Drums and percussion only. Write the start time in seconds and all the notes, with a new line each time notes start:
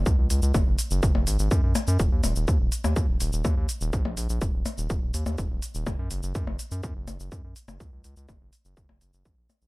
0.06 kick, shaker
0.30 open hi-hat, shaker
0.42 shaker
0.54 kick, percussion blips, shaker
0.79 open hi-hat, shaker
0.91 shaker
1.03 kick, shaker
1.15 percussion blips
1.27 open hi-hat, shaker
1.39 shaker
1.51 kick, shaker
1.75 open hi-hat, percussion blips, shaker
1.87 shaker
1.99 kick, shaker
2.24 open hi-hat, percussion blips, shaker
2.36 shaker
2.48 kick, shaker
2.72 open hi-hat, shaker
2.84 percussion blips, shaker
2.96 kick, shaker
3.20 open hi-hat, shaker
3.33 shaker
3.45 kick, percussion blips, shaker
3.69 open hi-hat, shaker
3.81 shaker
3.93 kick, shaker
4.05 percussion blips
4.17 open hi-hat, shaker
4.29 shaker
4.41 kick, shaker
4.66 open hi-hat, percussion blips, shaker
4.78 shaker
4.90 kick, shaker
5.14 open hi-hat, shaker
5.26 percussion blips, shaker
5.38 kick, shaker
5.62 open hi-hat, shaker
5.75 shaker
5.87 kick, percussion blips, shaker
6.11 open hi-hat, shaker
6.23 shaker
6.35 kick, shaker
6.47 percussion blips
6.59 open hi-hat, shaker
6.71 shaker
6.83 kick, shaker
7.08 open hi-hat, percussion blips, shaker
7.20 shaker
7.32 kick, shaker
7.56 open hi-hat, shaker
7.68 percussion blips, shaker
7.80 kick, shaker
8.04 open hi-hat, shaker
8.17 shaker
8.29 kick, percussion blips, shaker
8.53 open hi-hat, shaker
8.65 shaker
8.77 kick, shaker
8.89 percussion blips
9.01 open hi-hat, shaker
9.13 shaker
9.25 kick, shaker
9.50 open hi-hat, percussion blips, shaker
9.62 shaker